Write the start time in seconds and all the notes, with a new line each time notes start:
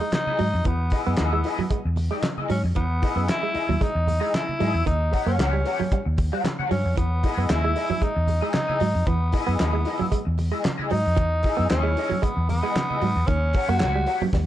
Already playing: D#4
0.01 G#3, muted clean electric guitar stroke
0.12 D#4, muted clean electric guitar stroke, snare, clap, closed hi-hat, high conga
0.27 E4 G#4 D#5, high conga
0.39 G#2 F#3, muted clean electric guitar stroke, open hi-hat
0.54 F2, muted clean electric guitar stroke
0.64 E2 E3 B3, kick, closed hi-hat, muted conga
0.90 E4 G#4 D#5, muted clean electric guitar stroke, kick, open hi-hat, muted conga
1.06 F#2 B3
1.17 D#2 E4 G#4 D#5, snare, clap, closed hi-hat, high conga
1.32 G#3, muted clean electric guitar stroke
1.44 E4 G#4 D#5, muted clean electric guitar stroke, open hi-hat
1.59 F#3, muted clean electric guitar stroke, low conga
1.70 G#3, muted fingered electric bass stroke, muted clean electric guitar stroke, kick, closed hi-hat, muted conga
1.85 E2, muted clean electric guitar stroke
1.96 muted clean electric guitar stroke, open hi-hat, muted conga
2.11 G#3 E4 G#4 D#5
2.23 muted clean electric guitar stroke, snare, clap, closed hi-hat, high conga
2.38 E4 G#4 D#5, high conga
2.50 G#2 F#3 C#4, muted clean electric guitar stroke, open hi-hat
2.64 F2, muted clean electric guitar stroke
2.75 E2 E3 B3, kick, closed hi-hat, muted conga
3.02 E4 G#4 D#5, muted clean electric guitar stroke, kick, open hi-hat, muted conga
3.16 F#2 B3
3.28 E4 G#4 D#5, snare, clap, closed hi-hat, high conga
3.42 G#3, muted clean electric guitar stroke
3.54 E4 G#4 D#5, muted clean electric guitar stroke, muted fingered electric bass stroke, open hi-hat
3.69 D#2 F#3, muted clean electric guitar stroke, low conga
3.80 G#3 D#4, muted clean electric guitar stroke, muted fingered electric bass stroke, kick, closed hi-hat, muted conga
3.95 E2, muted clean electric guitar stroke
4.07 muted clean electric guitar stroke, open hi-hat, muted conga, low conga
4.20 G#3 E4 G#4 D#5
4.34 E4, snare, clap, closed hi-hat, high conga
4.47 muted clean electric guitar stroke, high conga
4.59 G#2 F#3 E4 G#4 D#5, open hi-hat
4.73 E2, muted clean electric guitar stroke
4.86 D#2 D#3 D#4, kick, closed hi-hat, muted conga
5.12 G4 C#5 F#5, muted clean electric guitar stroke, kick, open hi-hat
5.26 F#2 A#3 C#4
5.38 C#2 G4 C#5 F#5, snare, clap, closed hi-hat, high conga
5.53 G3, muted clean electric guitar stroke
5.65 G4 C#5 F#5, muted clean electric guitar stroke, open hi-hat
5.80 F#3, muted clean electric guitar stroke, low conga
5.92 G3, muted fingered electric bass stroke, muted clean electric guitar stroke, kick, closed hi-hat, muted conga
6.05 D#2, muted clean electric guitar stroke
6.18 muted clean electric guitar stroke, kick, open hi-hat, muted conga
6.32 G3 G4 C#5 F#5
6.44 muted clean electric guitar stroke, snare, clap, closed hi-hat, high conga
6.59 G4 C#5 F#5, high conga
6.71 G2 F#3 C#4, muted clean electric guitar stroke, open hi-hat
6.85 F2, muted clean electric guitar stroke
6.96 E2 E3 B3, kick, closed hi-hat, muted conga
7.23 E4 G#4 D#5, muted clean electric guitar stroke, kick, open hi-hat
7.37 F#2 B3
7.49 D#2 E4 G#4 D#5, snare, clap, closed hi-hat, high conga
7.63 G#3, muted clean electric guitar stroke
7.75 E4 G#4 D#5, muted clean electric guitar stroke, open hi-hat
7.89 F#3, muted clean electric guitar stroke, low conga
8.01 G#3 D#4, muted clean electric guitar stroke, muted fingered electric bass stroke, kick, closed hi-hat, muted conga
8.15 E2, muted clean electric guitar stroke
8.27 muted clean electric guitar stroke, open hi-hat, muted conga, low conga
8.41 G#3 E4 G#4 D#5
8.53 D#4, muted clean electric guitar stroke, snare, clap, closed hi-hat, high conga
8.68 E4 G#4 D#5, high conga
8.80 G#2 F#3, muted clean electric guitar stroke, open hi-hat
8.95 F2, muted clean electric guitar stroke
9.07 E2 E3 B3, kick, closed hi-hat, muted conga
9.32 E4 G#4 D#5, muted clean electric guitar stroke, kick, open hi-hat, muted conga
9.46 F#2 B3
9.59 D#2 E4 G#4 D#5, snare, clap, closed hi-hat, high conga
9.73 G#3, muted clean electric guitar stroke
9.85 E4 G#4 D#5, muted clean electric guitar stroke, open hi-hat
9.99 F#3, muted clean electric guitar stroke, low conga
10.12 G#3, muted clean electric guitar stroke, muted fingered electric bass stroke, kick, closed hi-hat, muted conga
10.25 E2, muted clean electric guitar stroke
10.38 muted clean electric guitar stroke, open hi-hat, muted conga
10.52 G#3 E4 G#4 D#5
10.64 muted clean electric guitar stroke, snare, clap, closed hi-hat, high conga
10.78 E4 G#4 D#5, high conga
10.90 G#2 F#3 D#4, muted clean electric guitar stroke, open hi-hat
11.05 F2, muted clean electric guitar stroke
11.17 E2 E3, kick, closed hi-hat, muted conga
11.43 E4 G#4 D#5, muted clean electric guitar stroke, kick, open hi-hat, muted conga
11.57 F#2 B3
11.70 D#2 C#4 E4 G#4 D#5, snare, clap, closed hi-hat, high conga
11.83 G#3, muted clean electric guitar stroke
11.96 E4 G#4 D#5, muted clean electric guitar stroke, open hi-hat
12.10 F#3, muted clean electric guitar stroke, low conga
12.22 G#3 B3, muted clean electric guitar stroke, muted fingered electric bass stroke, kick, closed hi-hat, muted conga
12.37 E2, muted clean electric guitar stroke
12.49 B3, muted clean electric guitar stroke, open hi-hat, muted conga, low conga
12.63 G#3 E4 G#4 D#5
12.76 muted clean electric guitar stroke, snare, clap, closed hi-hat, high conga
12.90 E4 G#4 D#5, high conga
13.01 G#2 F#3, muted clean electric guitar stroke, open hi-hat
13.16 E2, muted clean electric guitar stroke
13.27 D#2 D#3 C#4, kick, closed hi-hat, muted conga
13.53 G4 C#5 F#5, muted clean electric guitar stroke, kick, open hi-hat
13.69 F#2 A#3 F#4
13.80 C#2 G4 C#5 F#5, snare, clap, closed hi-hat, high conga
13.94 G3, muted clean electric guitar stroke
14.06 G4 C#5 F#5, muted clean electric guitar stroke, open hi-hat
14.20 F#3, muted clean electric guitar stroke, low conga
14.33 D#2 G3, muted clean electric guitar stroke, kick, snare, muted conga